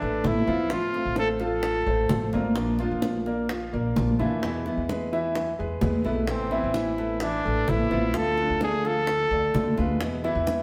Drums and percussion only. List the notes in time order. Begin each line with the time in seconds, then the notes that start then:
0.01 high conga
0.24 high bongo, low bongo, high conga
0.48 high bongo
0.70 high bongo, high conga
0.94 high bongo, high conga
1.16 high bongo, high conga
1.40 high bongo, high conga
1.63 high bongo, high conga
1.86 high conga
2.09 high bongo, low bongo, high conga
2.33 high bongo, high conga
2.56 high bongo
2.79 high bongo, high conga
3.02 high bongo, high conga
3.26 high bongo, high conga
3.49 high bongo, high conga
3.73 high conga
3.96 high bongo, low bongo, high conga
4.20 high bongo, high conga
4.43 high bongo, high conga
4.66 high bongo, high conga
4.89 high bongo, high conga
5.13 high bongo, high conga
5.35 high bongo, high conga
5.59 high conga
5.81 high bongo, low bongo, high conga
6.05 high bongo, high conga
6.28 high bongo
6.51 high bongo, high conga
6.74 high bongo, high conga
6.98 high bongo, high conga
7.20 high bongo, high conga
7.45 high conga
7.68 high bongo, low bongo, high conga
7.91 high bongo, high conga
8.14 high bongo
8.38 high bongo, high conga
8.61 high bongo, high conga
8.85 high bongo, high conga
9.07 high bongo, high conga
9.32 high conga
9.55 high bongo, low bongo, high conga
9.77 high bongo, high conga
10.01 high bongo
10.24 high bongo, high conga
10.47 high bongo, high conga